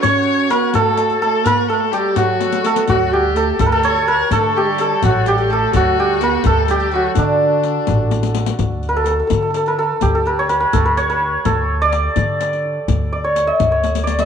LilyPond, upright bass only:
\new Staff \with { instrumentName = "Upright bass" } { \clef bass \time 6/8 \tempo 4. = 84 r2. | r2. | d,4. d,4. | d4. a,,4. |
d,4. d,4. | d4. a,,4. | d,4. d4. | d,4. d,4. |
d,4. d4. | d,4. d,4. | }